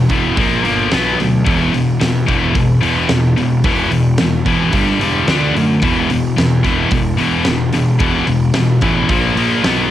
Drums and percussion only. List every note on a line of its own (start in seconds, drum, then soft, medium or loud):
0.10 kick medium
0.10 open hi-hat soft
0.37 kick loud
0.37 open hi-hat medium
0.65 open hi-hat medium
0.92 snare loud
0.92 open hi-hat medium
1.20 open hi-hat medium
1.46 kick loud
1.46 open hi-hat medium
1.74 open hi-hat soft
2.01 snare loud
2.01 open hi-hat medium
2.28 kick medium
2.28 open hi-hat soft
2.55 kick loud
2.55 open hi-hat medium
2.83 open hi-hat medium
3.09 snare loud
3.09 open hi-hat medium
3.38 open hi-hat soft
3.64 kick loud
3.64 open hi-hat medium
3.92 open hi-hat medium
4.18 snare loud
4.18 open hi-hat medium
4.46 kick medium
4.46 open hi-hat soft
4.73 kick medium
4.73 open hi-hat medium
5.01 open hi-hat medium
5.28 snare loud
5.28 open hi-hat medium
5.57 open hi-hat medium
5.82 kick loud
5.82 open hi-hat medium
6.10 open hi-hat medium
6.38 snare loud
6.38 open hi-hat medium
6.64 kick medium
6.64 snare soft
6.64 open hi-hat soft
6.91 kick loud
6.91 open hi-hat medium
7.18 open hi-hat soft
7.45 snare loud
7.45 open hi-hat medium
7.73 snare soft
7.73 open hi-hat medium
8.00 kick loud
8.00 open hi-hat medium
8.27 open hi-hat soft
8.54 snare loud
8.54 open hi-hat medium
8.81 kick medium
8.81 open hi-hat medium
9.09 kick loud
9.09 open hi-hat medium
9.37 open hi-hat medium
9.64 snare loud
9.64 open hi-hat medium